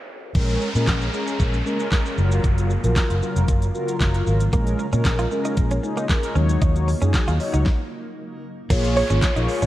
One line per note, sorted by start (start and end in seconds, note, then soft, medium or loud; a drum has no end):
0.00 noise sweep medium
0.35 0.56 A#1 loud
0.35 7.62 C#3 medium
0.35 0.68 G#3 medium
0.35 2.16 G#3 medium
0.35 4.49 A#3 medium
0.35 0.69 C#4 medium
0.35 6.32 F4 medium
0.35 0.69 A#4 loud
0.35 kick loud
0.35 crash medium
0.35 downlifter medium
0.35 shaker medium
0.49 shaker medium
0.61 shaker medium
0.75 0.85 A#2 loud
0.75 1.08 G#3 medium
0.75 1.08 C#4 medium
0.75 1.08 A#4 loud
0.75 shaker medium
0.87 1.08 A#1 medium
0.87 kick loud
0.87 snare medium
0.87 clap loud
0.87 shaker medium
1.02 shaker medium
1.13 1.58 G#3 medium
1.13 1.58 C#4 medium
1.13 1.58 A#4 medium
1.13 shaker medium
1.27 shaker medium
1.40 1.60 A#1 loud
1.40 kick loud
1.40 shaker medium
1.54 shaker medium
1.66 1.88 G#3 medium
1.66 1.88 C#4 medium
1.66 1.88 A#4 medium
1.66 shaker medium
1.80 shaker medium
1.92 2.18 G#3 medium
1.92 2.18 C#4 medium
1.92 kick loud
1.92 snare medium
1.92 clap loud
1.92 shaker medium
2.06 shaker medium
2.18 2.38 F#1 loud
2.18 2.73 F#3 medium
2.18 4.51 F#3 medium
2.18 2.73 F4 medium
2.18 2.73 A#4 medium
2.18 shaker soft
2.32 shaker medium
2.44 2.75 F#1 loud
2.44 kick loud
2.44 closed hi-hat medium
2.44 shaker medium
2.58 closed hi-hat medium
2.58 shaker medium
2.70 shaker medium
2.84 2.94 A#1 medium
2.84 3.16 F#3 medium
2.84 3.16 F4 medium
2.84 3.16 A#4 loud
2.84 closed hi-hat medium
2.84 shaker medium
2.96 kick loud
2.96 snare medium
2.96 clap loud
2.96 closed hi-hat medium
2.96 shaker medium
3.10 3.20 F#1 medium
3.10 closed hi-hat medium
3.10 shaker medium
3.22 3.67 F#3 medium
3.22 3.67 F4 medium
3.22 3.67 A#4 medium
3.22 shaker medium
3.36 3.46 F1 medium
3.36 closed hi-hat medium
3.36 shaker medium
3.48 3.69 F#1 loud
3.48 kick loud
3.48 closed hi-hat medium
3.48 shaker medium
3.62 closed hi-hat medium
3.62 shaker medium
3.74 3.97 F#3 medium
3.74 3.97 F4 medium
3.74 3.97 A#4 medium
3.74 shaker soft
3.89 closed hi-hat soft
3.89 shaker medium
4.00 4.21 F#1 medium
4.00 4.45 F#3 medium
4.00 4.45 F4 medium
4.00 4.45 A#4 loud
4.00 kick loud
4.00 snare medium
4.00 clap loud
4.00 closed hi-hat medium
4.00 shaker medium
4.15 closed hi-hat medium
4.15 shaker medium
4.27 4.47 G#1 medium
4.27 shaker medium
4.41 closed hi-hat medium
4.41 shaker medium
4.53 4.73 A#1 loud
4.53 4.86 G#3 medium
4.53 6.34 G#3 medium
4.53 6.34 A#3 medium
4.53 4.65 A#3 medium
4.53 4.86 C#4 medium
4.53 4.86 A#4 loud
4.53 kick loud
4.53 closed hi-hat medium
4.53 shaker medium
4.67 closed hi-hat medium
4.67 shaker medium
4.79 muted clean electric guitar stroke soft
4.79 shaker medium
4.93 5.02 A#2 loud
4.93 5.25 G#3 medium
4.93 5.03 C#4 medium
4.93 5.25 C#4 medium
4.93 5.25 A#4 loud
4.93 closed hi-hat medium
4.93 shaker medium
5.05 5.25 A#1 medium
5.05 kick loud
5.05 snare medium
5.05 clap loud
5.05 closed hi-hat medium
5.05 shaker medium
5.19 5.29 F4 medium
5.19 closed hi-hat medium
5.19 shaker medium
5.31 5.75 G#3 medium
5.31 5.75 C#4 medium
5.31 5.75 A#4 medium
5.31 muted clean electric guitar stroke soft
5.31 shaker medium
5.45 5.55 D#4 medium
5.45 closed hi-hat medium
5.45 shaker medium
5.57 5.78 A#1 loud
5.57 kick loud
5.57 closed hi-hat medium
5.57 shaker medium
5.71 5.82 C#4 medium
5.71 closed hi-hat medium
5.71 shaker medium
5.83 6.05 G#3 medium
5.83 6.05 C#4 medium
5.83 6.06 D#4 medium
5.83 muted clean electric guitar stroke soft
5.83 shaker soft
5.97 6.08 A#3 medium
5.97 closed hi-hat soft
5.97 shaker medium
6.09 6.35 G#3 medium
6.09 6.35 C#4 medium
6.09 6.36 A#4 loud
6.09 kick loud
6.09 snare medium
6.09 clap loud
6.09 closed hi-hat medium
6.09 shaker medium
6.23 closed hi-hat medium
6.23 shaker medium
6.35 6.56 D#2 loud
6.35 6.90 F#3 medium
6.35 6.47 C#4 medium
6.35 6.90 D#4 medium
6.35 6.90 C#5 loud
6.35 shaker medium
6.49 closed hi-hat medium
6.49 shaker medium
6.62 6.93 D#2 loud
6.62 6.73 D#4 medium
6.62 kick loud
6.62 closed hi-hat medium
6.62 shaker medium
6.76 closed hi-hat medium
6.76 shaker medium
6.88 muted clean electric guitar stroke soft
6.88 open hi-hat medium
6.88 shaker medium
7.01 7.11 F#2 medium
7.01 7.34 F#3 medium
7.01 7.12 C#4 medium
7.01 7.34 D#4 medium
7.01 7.34 G#4 loud
7.01 closed hi-hat medium
7.01 shaker medium
7.14 kick loud
7.14 snare medium
7.14 clap loud
7.14 closed hi-hat medium
7.14 shaker medium
7.28 7.37 D#2 medium
7.28 7.38 F4 medium
7.28 closed hi-hat medium
7.28 shaker medium
7.40 7.66 F#3 medium
7.40 7.66 D#4 medium
7.40 7.66 C#5 loud
7.40 muted clean electric guitar stroke soft
7.40 open hi-hat medium
7.40 shaker medium
7.54 7.63 C#2 medium
7.54 7.64 D#4 medium
7.54 closed hi-hat medium
7.54 shaker medium
7.66 kick loud
7.66 snare medium
8.70 9.01 A#1 loud
8.70 9.66 C#3 medium
8.70 9.66 G#3 medium
8.70 9.03 A#3 medium
8.70 8.82 A#3 medium
8.70 9.66 A#3 medium
8.70 9.03 F4 medium
8.70 9.66 F4 medium
8.70 9.03 G#4 medium
8.70 9.04 C#5 loud
8.70 kick loud
8.70 closed hi-hat medium
8.70 crash loud
8.70 downlifter medium
8.70 shaker medium
8.84 closed hi-hat medium
8.84 shaker medium
8.96 9.66 C#5 medium
8.96 muted clean electric guitar stroke soft
8.96 open hi-hat medium
8.96 shaker medium
9.10 9.20 G#1 medium
9.10 9.32 A#3 medium
9.10 9.21 C#4 medium
9.10 9.32 F4 medium
9.10 9.32 G#4 medium
9.10 9.32 C#5 medium
9.10 closed hi-hat medium
9.10 shaker medium
9.22 kick loud
9.22 snare loud
9.22 clap medium
9.22 clap loud
9.22 closed hi-hat medium
9.22 shaker medium
9.36 9.46 A#1 medium
9.36 9.66 A#3 medium
9.36 9.47 D#4 medium
9.36 9.66 F4 medium
9.36 9.66 G#4 medium
9.36 9.66 C#5 medium
9.36 closed hi-hat medium
9.36 shaker medium
9.48 muted clean electric guitar stroke soft
9.48 open hi-hat medium
9.48 shaker medium
9.62 9.66 A#1 medium
9.62 9.66 C#4 medium
9.62 closed hi-hat medium
9.62 shaker medium